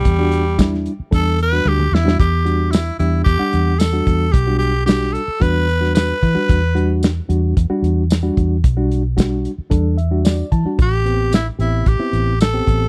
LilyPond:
<<
  \new Staff \with { instrumentName = "Tenor saxophone" } { \time 4/4 \key e \minor \tempo 4 = 112 g4. r8 a'8 b'8 g'8 e'8 | g'4 e'8 e'8 g'4 a'4 | g'8 g'8 g'8 a'8 b'4 b'4~ | b'4 r2. |
r1 | g'4 e'8 e'8 g'4 a'4 | }
  \new Staff \with { instrumentName = "Reed electric piano" } { \time 4/4 \key e \minor << { r1 | r1 | r1 | r1 |
r2 r8 e''8 d''8 a''8 | r1 | } \\ { r16 <g d' fis'>8 r16 <g d' e'>8 r8 <g d' a'>8 r16 <g d' fis'>8 r8 <g d' fis'>16 | r8 <g d' fis'>8 r8 <g d' g'>8 r16 <g d' fis''>8 r8 <g d' fis'>8 r16 | r16 <g d' fis'>8 r16 <g d' fis'>8 r8 <g d' fis'>8 r16 <g d' fis'>8 r8 <g d' fis'>16~ | <g d' fis'>16 r16 <g d' fis'>8 r8 <g d' fis'>8 r16 <g d' fis'>8 r8 <g d' fis'>8 r16 |
r16 <g d' fis'>8 r16 <g d' fis'>8 r8 <g d' a'>8 r16 <g d' fis'>8 r8 <g d' fis'>16 | r8 <b c' g'>8 r8 <b c' g'>8 r16 <b c' e'>8 r8 <b c' g'>8 r16 | } >> }
  \new Staff \with { instrumentName = "Fingered electric bass" } { \clef bass \time 4/4 \key e \minor e,4.~ e,16 r16 e,4 d,8 e,8 | e,4. e,8 e,16 r16 e,4 e,8 | b,,4.~ b,,16 r16 e,4. e16 r16 | e,4. e,8 e,16 r16 e,4 e,8 |
b,,4.~ b,,16 r16 e,4. e16 r16 | a,,4. a,,8 a,,16 r16 a,,4 a,,8 | }
  \new DrumStaff \with { instrumentName = "Drums" } \drummode { \time 4/4 <hh bd>8 hh8 <hh bd sn tamb>16 sn16 hh8 <hh bd>8 hh16 sn16 tommh16 toml16 sn16 sn16 | <hh bd>8 hh8 <hh sn tamb>8 hh8 <hh bd>8 hh8 <hh sn tamb>8 <hh bd>8 | <hh bd>8 hh8 <hh sn tamb>16 sn16 hh8 <hh bd>8 hh16 sn16 <hh sn tamb>8 <hh bd>8 | <hh bd>8 hh8 <hh sn tamb>8 hh8 <hh bd>8 hh8 <hh sn tamb>8 <hh bd>8 |
<hh bd>8 hh8 <hh bd sn tamb>8 hh8 <hh bd>8 hh8 <hh sn tamb>8 <hh bd>8 | <hh bd>8 hh8 <hh sn tamb>8 hh8 <hh bd>8 hh8 <hh sn tamb>8 <hh bd>8 | }
>>